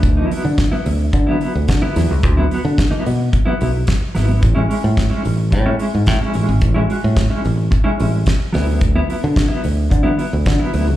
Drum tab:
HH |xoxoxoxo|xoxoxoxo|xoxoxoxo|xoxoxoxo|
SD |--o---oo|--o---oo|--o---o-|--o---oo|
BD |o-o-o-o-|o-o-o-o-|o-o-o-o-|o-o-o-o-|

HH |xoxoxoxo|
SD |--o---o-|
BD |o-o-o-o-|